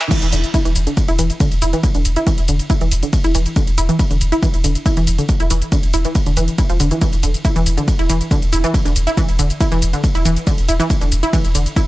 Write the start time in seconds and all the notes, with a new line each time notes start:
Already playing: E3 E4, riser
0.01 E3, snare, closed hi-hat, shaker
0.11 E3, kick, closed hi-hat, ride, crash, shaker
0.22 E1, closed hi-hat, shaker
0.32 E1 D3, open hi-hat, shaker
0.44 closed hi-hat, shaker
0.54 E4, kick, closed hi-hat, ride, shaker
0.65 E1 E3, closed hi-hat, shaker
0.76 E1, open hi-hat, shaker
0.87 D3, closed hi-hat, shaker
0.97 kick, closed hi-hat, ride, shaker
1.08 E1 E4, closed hi-hat, shaker
1.19 E1 E3, open hi-hat, shaker
1.30 closed hi-hat, shaker
1.40 D3, kick, closed hi-hat, ride, shaker
1.52 E1, closed hi-hat, shaker
1.62 E1 E4, open hi-hat, shaker
1.73 E3, closed hi-hat, shaker
1.83 kick, closed hi-hat, ride, shaker
1.95 E1 D3, closed hi-hat, shaker
2.05 E1, open hi-hat, shaker
2.16 E4, closed hi-hat, shaker
2.27 E3, kick, closed hi-hat, ride, shaker
2.38 E1, closed hi-hat, shaker
2.48 E1 D3, open hi-hat, shaker
2.59 closed hi-hat, shaker
2.70 E4, kick, closed hi-hat, ride, shaker
2.81 E1 E3, closed hi-hat, shaker
2.91 E1, open hi-hat, shaker
3.03 D3, closed hi-hat, shaker
3.13 kick, closed hi-hat, ride, shaker
3.24 E1 E4, closed hi-hat, shaker
3.35 E1 E3, open hi-hat, shaker
3.46 closed hi-hat, shaker
3.56 D3, kick, closed hi-hat, ride, shaker
3.67 E1, closed hi-hat, shaker
3.78 E1 E4, open hi-hat, shaker
3.89 E3, closed hi-hat, shaker
3.99 kick, closed hi-hat, ride, shaker
4.11 E1 D3, closed hi-hat, shaker
4.21 E1, open hi-hat, shaker
4.32 E4, closed hi-hat, shaker
4.43 E3, kick, closed hi-hat, ride, shaker
4.54 E1, closed hi-hat, shaker
4.64 E1 D3, open hi-hat, shaker
4.75 closed hi-hat, shaker
4.86 E4, kick, closed hi-hat, ride, shaker
4.97 E1 E3, closed hi-hat, shaker
5.07 E1, open hi-hat, shaker
5.18 D3, closed hi-hat, shaker
5.29 kick, closed hi-hat, ride, shaker
5.40 E1 E4, closed hi-hat, shaker
5.50 E1 E3, open hi-hat, shaker
5.62 closed hi-hat, shaker
5.72 D3, kick, closed hi-hat, ride, shaker
5.83 E1, closed hi-hat, shaker
5.94 E1 E4, open hi-hat, shaker
6.05 E3, closed hi-hat, shaker
6.15 kick, closed hi-hat, ride, shaker
6.26 E1 D3, closed hi-hat, shaker
6.37 E1 E3, open hi-hat, shaker
6.48 closed hi-hat, shaker
6.58 E4, kick, closed hi-hat, ride, shaker
6.70 E1 F3, closed hi-hat, shaker
6.80 E1 D3, open hi-hat, shaker
6.91 E3, closed hi-hat, shaker
7.01 E3, kick, closed hi-hat, ride, shaker
7.13 E1, closed hi-hat, shaker
7.23 E1 D3, open hi-hat, shaker
7.34 closed hi-hat, shaker
7.45 E4, kick, closed hi-hat, ride, shaker
7.56 E1 E3, closed hi-hat, shaker
7.66 E1, open hi-hat, shaker
7.77 D3, closed hi-hat, shaker
7.88 kick, closed hi-hat, ride, shaker
7.99 E1 E4, closed hi-hat, shaker
8.09 E1 E3, open hi-hat, shaker
8.21 closed hi-hat, shaker
8.31 D3, kick, closed hi-hat, ride, shaker
8.42 E1, closed hi-hat, shaker
8.53 E1 E4, open hi-hat, shaker
8.64 E3, closed hi-hat, shaker
8.74 kick, closed hi-hat, ride, shaker
8.85 E1 D3, closed hi-hat, shaker
8.96 E1, open hi-hat, shaker
9.07 E4, closed hi-hat, shaker
9.17 E3, kick, closed hi-hat, ride, shaker
9.29 E1, closed hi-hat, shaker
9.39 E1 D3, open hi-hat, shaker
9.50 closed hi-hat, shaker
9.61 E4, kick, closed hi-hat, ride, shaker
9.72 E1 E3, closed hi-hat, shaker
9.82 E1, open hi-hat, shaker
9.93 D3, closed hi-hat, shaker
10.04 kick, closed hi-hat, ride, shaker
10.15 E1 E4, closed hi-hat, shaker
10.25 E1 E3, open hi-hat, shaker
10.37 closed hi-hat, shaker
10.47 D3, kick, closed hi-hat, ride, shaker
10.58 E1, closed hi-hat, shaker
10.68 E1 E4, open hi-hat, shaker
10.80 E3, closed hi-hat, shaker
10.90 kick, closed hi-hat, ride, shaker
11.01 E1 D3, closed hi-hat, shaker
11.12 E1, open hi-hat, shaker
11.23 E4, closed hi-hat, shaker
11.33 E3, kick, closed hi-hat, ride, shaker
11.45 E1, closed hi-hat, shaker
11.55 E1 D3, open hi-hat, shaker
11.66 closed hi-hat, shaker
11.76 E4, kick, closed hi-hat, ride, shaker